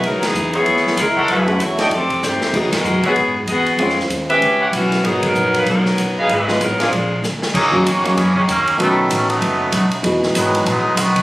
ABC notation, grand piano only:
X:1
M:4/4
L:1/8
Q:"Swing" 1/4=192
K:Elyd
V:1 name="Grand piano"
z8 | z [=A,CEG] z [A,=D^D=A] z4 | [G,B,DF]4- [G,B,DF] z3 | [G,^B,C^E]4 z4 |
[B,DFA]4- [B,DFA] z3 | z [_A,_C_E=F] z [A,^B,=DF] z4 | z [F,A,CDF] z [F,A,CDF] z4 | [D,=A,B,CF]4- [D,A,B,CF] z3 |
[E,G,B,DF]4- [E,G,B,DF] z3 |]